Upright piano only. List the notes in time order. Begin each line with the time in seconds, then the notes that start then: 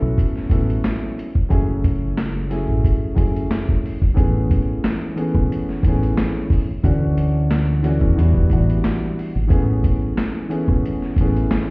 Already playing: F#3 B3 C#4 E4 A4
0.50 F#3 B3 C#4 E4 A4
1.49 F#3 A3 C#4 E4 G#4
2.50 F#3 A3 C#4 E4 G#4
3.14 F#3 A3 C#4 E4 G#4
4.14 E3 A3 B3 C#4 G#4
5.16 E3 A3 B3 C#4 G#4
5.86 E3 A3 B3 C#4 G#4
6.83 E3 A3 C#4 D4 F#4
7.83 E3 A3 C#4 D4 F#4
8.16 E3 G3 B3 D4 F#4
8.51 E3 G3 B3 D4 F#4
9.47 E3 A3 B3 C#4 G#4
10.49 E3 A3 B3 C#4 G#4
11.20 E3 A3 B3 C#4 G#4